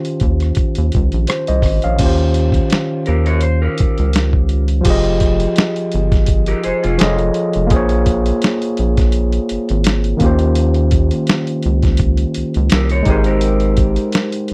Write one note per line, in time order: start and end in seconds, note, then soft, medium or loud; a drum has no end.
0.00 1.58 D#3 medium
0.00 1.59 C#4 medium
0.00 1.60 F4 medium
0.00 1.61 G4 medium
0.00 1.27 C5 medium
0.05 closed hi-hat soft
0.20 0.52 D#2 medium
0.20 kick loud
0.20 closed hi-hat medium
0.40 cross-stick soft
0.40 closed hi-hat soft
0.55 kick medium
0.55 closed hi-hat medium
0.75 0.91 D#2 medium
0.75 closed hi-hat medium
0.92 1.11 C#2 medium
0.92 kick medium
0.92 closed hi-hat medium
1.12 1.27 A#1 medium
1.12 closed hi-hat soft
1.27 1.47 C5 medium
1.27 cross-stick loud
1.27 closed hi-hat medium
1.47 1.62 C2 medium
1.47 1.82 C5 medium
1.47 1.82 D#5 medium
1.47 closed hi-hat soft
1.62 1.80 G#1 loud
1.62 kick medium
1.62 cross-stick soft
1.62 open hi-hat soft
1.82 1.98 A#1 medium
1.82 2.18 C#5 medium
1.82 2.17 F5 medium
1.82 closed hi-hat medium
1.96 4.79 D#3 medium
1.96 4.81 C#4 medium
1.96 kick loud
1.96 closed hi-hat medium
1.96 crash medium
2.00 2.61 D#2 medium
2.00 4.82 F4 medium
2.00 4.83 G4 medium
2.05 4.84 C5 medium
2.18 closed hi-hat soft
2.34 closed hi-hat medium
2.52 kick medium
2.52 closed hi-hat soft
2.70 snare loud
2.70 closed hi-hat medium
3.06 3.68 D#2 medium
3.06 3.25 G4 medium
3.06 3.25 A#4 medium
3.06 closed hi-hat medium
3.26 3.42 A#4 medium
3.26 3.42 C#5 medium
3.26 closed hi-hat soft
3.41 3.61 C5 medium
3.41 closed hi-hat medium
3.62 4.65 G4 medium
3.62 4.65 A#4 medium
3.78 3.88 C#2 soft
3.78 kick medium
3.78 closed hi-hat medium
3.98 4.82 C#2 medium
3.98 closed hi-hat soft
4.13 snare loud
4.13 closed hi-hat medium
4.33 kick medium
4.49 closed hi-hat medium
4.68 closed hi-hat medium
4.81 6.93 F3 medium
4.81 6.95 F4 medium
4.81 closed hi-hat medium
4.85 5.46 F1 loud
4.85 6.96 G4 medium
4.85 6.97 G#4 medium
4.85 kick loud
4.85 crash medium
4.90 6.98 D#5 medium
5.04 closed hi-hat soft
5.20 kick medium
5.20 closed hi-hat medium
5.40 closed hi-hat medium
5.56 snare loud
5.56 closed hi-hat medium
5.76 closed hi-hat medium
5.92 6.54 G1 medium
5.92 closed hi-hat medium
6.12 kick loud
6.12 snare soft
6.12 closed hi-hat soft
6.26 kick medium
6.26 closed hi-hat medium
6.46 6.63 G4 medium
6.46 6.63 A#4 medium
6.46 closed hi-hat soft
6.63 6.73 F1 soft
6.63 6.82 G#4 medium
6.63 6.82 C5 medium
6.63 closed hi-hat medium
6.83 6.98 F1 medium
6.83 7.17 F4 medium
6.83 7.17 G#4 medium
6.83 closed hi-hat soft
6.98 7.31 F1 loud
6.98 7.70 F3 medium
6.98 7.68 F4 medium
6.98 7.70 G#4 medium
6.98 7.72 A4 medium
6.98 7.72 C#5 medium
6.98 snare loud
6.98 closed hi-hat medium
7.03 7.72 D#5 medium
7.18 closed hi-hat soft
7.34 closed hi-hat medium
7.53 7.74 F1 medium
7.53 closed hi-hat medium
7.67 10.15 A#3 medium
7.67 10.16 F4 medium
7.67 closed hi-hat medium
7.71 8.32 A#1 loud
7.71 10.17 G#4 medium
7.71 10.18 C5 medium
7.71 kick loud
7.76 10.19 C#5 medium
7.89 closed hi-hat soft
8.06 kick medium
8.06 closed hi-hat medium
8.26 closed hi-hat medium
8.42 snare loud
8.42 closed hi-hat medium
8.62 closed hi-hat soft
8.77 9.39 A#1 medium
8.77 closed hi-hat medium
8.97 kick medium
8.97 snare soft
8.97 closed hi-hat soft
9.12 closed hi-hat medium
9.32 closed hi-hat medium
9.49 9.58 G#1 soft
9.49 closed hi-hat medium
9.69 10.14 G#1 loud
9.69 closed hi-hat soft
9.84 snare loud
9.84 closed hi-hat medium
10.04 closed hi-hat medium
10.17 13.01 D#3 medium
10.17 13.02 A#3 medium
10.17 13.02 C#4 medium
10.17 kick loud
10.17 closed hi-hat medium
10.22 11.12 D#2 loud
10.22 13.03 F4 medium
10.22 13.04 G4 medium
10.26 13.05 C5 medium
10.39 closed hi-hat medium
10.55 closed hi-hat medium
10.74 closed hi-hat soft
10.91 kick medium
10.91 closed hi-hat medium
11.11 closed hi-hat medium
11.27 snare loud
11.27 closed hi-hat medium
11.47 closed hi-hat medium
11.63 12.25 C#2 medium
11.63 closed hi-hat medium
11.82 kick loud
11.82 snare soft
11.82 closed hi-hat soft
11.97 kick loud
11.97 closed hi-hat medium
12.17 closed hi-hat medium
12.34 12.44 C#2 soft
12.34 closed hi-hat medium
12.54 12.70 C#2 medium
12.54 closed hi-hat soft
12.70 13.02 C2 loud
12.70 12.90 G4 medium
12.70 12.90 A#4 medium
12.70 snare loud
12.70 closed hi-hat medium
12.90 13.06 A#4 medium
12.90 13.06 C#5 medium
12.90 closed hi-hat soft
13.03 14.54 G#3 medium
13.03 14.54 D#4 medium
13.03 kick loud
13.03 closed hi-hat medium
13.07 13.98 G#1 loud
13.07 14.54 G4 medium
13.07 13.26 G#4 medium
13.07 14.54 A#4 medium
13.07 13.25 C5 medium
13.12 14.54 C5 medium
13.24 14.30 G4 medium
13.24 14.29 A#4 medium
13.24 closed hi-hat medium
13.41 closed hi-hat medium
13.60 closed hi-hat soft
13.77 kick medium
13.77 closed hi-hat medium
13.96 closed hi-hat soft
14.12 snare loud
14.12 closed hi-hat medium
14.32 closed hi-hat medium
14.48 closed hi-hat medium